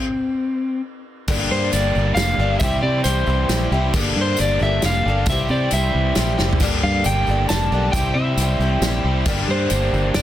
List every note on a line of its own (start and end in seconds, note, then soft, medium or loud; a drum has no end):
0.00 0.81 C4 medium
1.28 1.47 G1 loud
1.28 1.72 G2 medium
1.28 1.73 D3 medium
1.28 1.71 G3 loud
1.28 1.71 A#3 loud
1.28 1.72 D4 loud
1.28 9.24 G4 medium
1.28 2.39 G4 loud
1.28 1.73 A4 loud
1.28 2.61 D5 medium
1.28 2.61 A5 medium
1.28 kick loud
1.28 crash loud
1.28 tambourine medium
1.51 1.69 G2 medium
1.51 1.73 C5 medium
1.71 1.91 G1 medium
1.71 2.15 G3 medium
1.71 2.16 A#3 medium
1.71 2.16 D4 medium
1.71 2.17 A4 medium
1.71 2.14 D5 medium
1.71 closed hi-hat medium
1.71 tambourine medium
1.84 tambourine soft
1.95 2.14 G1 medium
1.95 tambourine soft
2.14 2.34 F1 medium
2.14 2.38 G3 medium
2.14 2.39 A#3 medium
2.14 2.39 D4 medium
2.14 2.57 F5 loud
2.14 snare medium
2.14 closed hi-hat medium
2.14 tambourine loud
2.19 2.38 A4 medium
2.38 2.57 G1 medium
2.38 2.61 G2 medium
2.38 2.61 D3 medium
2.38 2.62 A#3 soft
2.38 2.62 D4 soft
2.38 2.64 G4 medium
2.38 2.61 A4 soft
2.43 2.60 G3 soft
2.59 2.79 C2 loud
2.59 3.06 C3 medium
2.59 3.71 E3 medium
2.59 3.06 G3 medium
2.59 3.05 C4 medium
2.59 3.06 E4 medium
2.59 3.08 G4 medium
2.59 3.94 C5 medium
2.59 2.82 E5 medium
2.59 3.94 E5 medium
2.59 3.93 C6 medium
2.59 kick loud
2.59 closed hi-hat medium
2.59 tambourine loud
2.72 tambourine soft
2.83 3.01 C3 loud
2.83 3.03 D5 medium
3.04 3.24 C2 loud
3.04 3.28 G3 medium
3.04 3.28 C4 medium
3.04 3.28 E4 medium
3.04 3.67 C5 medium
3.04 closed hi-hat medium
3.04 tambourine loud
3.09 3.26 G4 medium
3.26 3.46 C2 loud
3.26 3.50 C4 soft
3.26 3.50 E4 soft
3.26 3.50 G4 soft
3.26 tambourine soft
3.49 3.68 A#1 medium
3.49 3.72 G3 medium
3.49 3.73 C4 medium
3.49 3.73 E4 medium
3.49 snare medium
3.49 closed hi-hat medium
3.49 tambourine loud
3.53 3.71 G4 medium
3.71 3.90 C2 medium
3.71 3.93 C3 medium
3.71 3.94 E3 medium
3.71 3.94 G3 medium
3.71 3.95 C4 soft
3.71 3.95 E4 medium
3.71 3.94 G4 medium
3.94 4.13 G1 loud
3.94 4.39 G2 medium
3.94 4.39 D3 medium
3.94 4.39 G3 medium
3.94 4.39 A#3 medium
3.94 5.27 A#3 medium
3.94 4.40 D4 loud
3.94 5.05 G4 medium
3.94 4.40 A4 loud
3.94 5.27 D5 medium
3.94 5.27 A5 medium
3.94 kick loud
3.94 crash loud
3.94 tambourine loud
4.04 tambourine soft
4.16 4.35 G2 loud
4.21 4.41 C5 medium
4.37 4.57 G1 medium
4.37 4.61 G3 medium
4.37 closed hi-hat medium
4.37 tambourine loud
4.41 4.62 A#3 medium
4.41 4.62 D4 medium
4.41 4.61 A4 medium
4.41 4.62 D5 loud
4.48 tambourine soft
4.59 4.79 G1 medium
4.59 4.84 A4 medium
4.59 4.85 E5 loud
4.59 tambourine soft
4.64 4.83 G3 soft
4.64 4.85 A#3 soft
4.64 4.84 D4 soft
4.82 5.02 F1 loud
4.82 5.06 G3 medium
4.82 5.07 A#3 medium
4.82 5.29 F5 loud
4.82 snare medium
4.82 closed hi-hat medium
4.82 tambourine loud
4.86 5.07 D4 medium
4.86 5.07 A4 medium
5.05 5.24 G1 loud
5.05 5.28 G2 medium
5.05 5.26 D3 medium
5.05 5.29 G4 medium
5.05 5.29 A4 medium
5.09 5.29 G3 soft
5.09 5.30 A#3 soft
5.09 5.29 D4 soft
5.26 5.46 C2 loud
5.26 6.37 C3 medium
5.26 6.37 E3 medium
5.26 6.60 C5 medium
5.26 6.60 E5 medium
5.26 5.50 E5 loud
5.26 6.60 C6 medium
5.26 kick loud
5.26 closed hi-hat medium
5.26 tambourine loud
5.30 5.73 C3 medium
5.30 5.72 G3 medium
5.30 5.73 C4 medium
5.30 5.74 E4 medium
5.30 5.76 G4 medium
5.49 5.68 C3 loud
5.49 5.73 D5 medium
5.49 tambourine soft
5.71 5.90 C2 medium
5.71 6.17 G3 medium
5.71 6.17 C4 medium
5.71 6.35 E5 medium
5.71 closed hi-hat medium
5.71 tambourine loud
5.75 6.18 E4 medium
5.75 6.20 G4 medium
5.94 6.13 C2 medium
6.15 6.35 A#1 medium
6.15 6.62 G3 medium
6.15 6.62 C4 medium
6.15 snare medium
6.15 closed hi-hat medium
6.15 tambourine medium
6.20 6.63 E4 medium
6.20 6.64 G4 medium
6.37 6.61 F1 medium
6.37 6.60 C3 medium
6.37 6.60 E3 medium
6.37 6.61 G3 medium
6.37 6.59 E4 medium
6.37 6.62 G4 medium
6.37 snare medium
6.37 tambourine soft
6.53 floor tom loud
6.60 6.79 G1 loud
6.60 7.06 G2 loud
6.60 7.06 D3 medium
6.60 7.06 G3 medium
6.60 7.93 A#3 medium
6.60 7.06 A#3 loud
6.60 7.06 D4 medium
6.60 7.71 G4 loud
6.60 7.93 D5 medium
6.60 7.93 A5 medium
6.60 kick loud
6.60 crash loud
6.60 tambourine loud
6.64 7.07 A4 loud
6.71 tambourine soft
6.83 7.01 G2 loud
6.83 7.04 F5 medium
7.04 7.24 G1 loud
7.04 7.28 G3 medium
7.04 7.28 A#3 medium
7.04 7.48 G5 loud
7.04 closed hi-hat medium
7.04 tambourine loud
7.09 7.28 D4 medium
7.09 7.27 A4 medium
7.15 tambourine soft
7.27 7.46 G1 medium
7.27 7.50 D4 soft
7.27 7.50 A4 medium
7.27 tambourine soft
7.31 7.48 G3 soft
7.31 7.50 A#3 soft
7.49 7.68 F1 medium
7.49 7.71 G3 medium
7.49 7.72 A#3 medium
7.49 7.72 D4 medium
7.49 7.71 A4 medium
7.49 7.92 A5 loud
7.49 snare medium
7.49 closed hi-hat medium
7.49 tambourine loud
7.71 7.90 B1 medium
7.71 7.93 G2 medium
7.71 7.93 D3 medium
7.71 7.95 G3 soft
7.71 7.95 A#3 soft
7.71 7.94 D4 soft
7.71 7.95 G4 medium
7.71 7.94 A4 soft
7.92 8.12 C2 loud
7.92 9.03 E3 medium
7.92 9.26 C5 medium
7.92 9.26 E5 medium
7.92 8.16 G5 medium
7.92 9.25 C6 medium
7.92 kick loud
7.92 closed hi-hat medium
7.92 tambourine loud
7.96 8.39 C3 medium
7.96 8.38 G3 medium
7.96 8.40 C4 medium
7.96 8.40 E4 medium
7.96 8.41 G4 loud
8.04 tambourine soft
8.14 8.34 C3 loud
8.14 9.00 E5 medium
8.37 8.56 C2 loud
8.37 8.60 G3 medium
8.37 8.62 C4 medium
8.37 closed hi-hat medium
8.37 tambourine loud
8.41 8.61 E4 medium
8.41 8.59 G4 medium
8.49 tambourine soft
8.59 8.78 C2 medium
8.59 8.83 E4 soft
8.59 8.82 G4 medium
8.59 tambourine soft
8.63 8.84 C4 soft
8.81 9.00 A#1 medium
8.81 9.27 G3 medium
8.81 9.27 C4 medium
8.81 snare medium
8.81 closed hi-hat medium
8.81 tambourine loud
8.86 9.28 E4 medium
8.86 9.28 G4 medium
9.04 9.22 C2 medium
9.04 9.26 C3 medium
9.04 9.26 E3 medium
9.04 9.26 G3 medium
9.04 9.25 E4 medium
9.04 9.28 G4 medium
9.26 9.45 G1 loud
9.26 9.71 G2 loud
9.26 9.71 D3 medium
9.26 9.70 G3 loud
9.26 9.71 A#3 loud
9.26 10.22 A#3 medium
9.26 9.72 D4 loud
9.26 10.22 G4 loud
9.26 10.22 G4 medium
9.26 9.72 A4 loud
9.26 10.22 D5 medium
9.26 10.22 A5 medium
9.26 kick loud
9.26 crash loud
9.26 tambourine loud
9.38 tambourine soft
9.48 9.67 G2 loud
9.48 10.18 C5 loud
9.70 9.89 G1 loud
9.70 10.14 G3 medium
9.70 10.16 A#3 medium
9.70 10.16 D4 medium
9.70 10.16 A4 medium
9.70 closed hi-hat medium
9.70 tambourine loud
9.82 tambourine soft
9.93 10.11 G1 medium
9.93 tambourine soft
10.14 10.22 F1 medium
10.14 10.22 G3 medium
10.14 10.22 A#3 medium
10.14 10.22 D4 medium
10.14 10.22 A4 medium
10.14 10.22 D5 medium
10.14 snare medium
10.14 closed hi-hat medium
10.14 tambourine medium